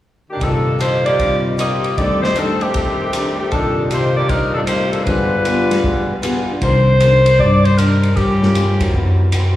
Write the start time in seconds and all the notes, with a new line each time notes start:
0.30 D#3 A#3 D4 G4
0.36 C2 G2 C3
0.41 D#3 F3 G3 A#3 D4 D#4 A4, kick, ride
0.46 A#2 F4
0.79 C3 F3 A#3 D#4 G4 C5, hi-hat pedal, ride
1.06 A#3 D#4 G4 D5, ride
1.19 C3 F3 G3 A#3 C4 D#4, kick, ride
1.57 C3 F3 A#3 D#4 G4 D5 D#5, hi-hat pedal, ride
1.84 ride
1.97 F2 D#3 G3 A3 C4 D4 G4 A4 D5, kick, ride
2.22 A3 D#4 G4 C5, snare
2.35 F2 D#3 G3 A3 C4 D4 D#4 A4, hi-hat pedal, ride
2.61 D#3 A3 C4 G4, ride
2.74 F2 D#3 A3 D4, kick, ride
3.13 F2 D#3 A3 D4, hi-hat pedal, ride
3.39 D#3 A3 C4 G4
3.51 C2 G2 C3 D#3 F3 G3 A#3 D4 D#4 A4, kick, ride
3.56 A#2 D5
3.91 C3 F3 A#3 D#4 G4 C5, hi-hat pedal, ride
4.17 A#3 D#4 G4 D5
4.29 C3 F3 G3 A#3 D4 D#4 A#4, kick, ride
4.54 A2 F3 G3 A#3 C4 D4 D#4 A4
4.67 C3 F3 A#3 D#4 G4 C5, hi-hat pedal, ride
4.91 F3 A#3 D4 A4, ride
5.04 G2 D3 F3 G3 G#3 B3 D4 F4 B4, kick, ride
5.09 G#3 B3 G#4
5.45 G3 B3 F4 G#4, hi-hat pedal, ride
5.70 F3 B3 G4, snare, ride
5.84 G3 B3 F4 G#4, kick
6.02 D5
6.13 B4
6.22 G3 B3 F4 G#4, hi-hat pedal, ride
6.32 G4
6.42 F4
6.51 D4
6.61 C2 C3 D#3 A#3 C4 D4 A#4 C5, kick, ride
7.00 C3 D#3 A#3 D4, hi-hat pedal, ride
7.26 ride
7.39 G2 C3 D#3 A#3 D4 D5, kick
7.64 C5, ride
7.77 C3 D#3 A#3 D4 A#4, hi-hat pedal, ride
8.03 ride
8.16 G2 F3 A#3 G4, kick, ride
8.20 C#4
8.41 G3 C#4 F4 A#4, snare
8.55 G2 F3 A#3 C#4, hi-hat pedal, ride
8.80 F2 F#3 C4 E4 A#4, ride
8.93 F#2 E3 A#3 C4, kick
9.32 F#2 E3 A#3 C4, hi-hat pedal, ride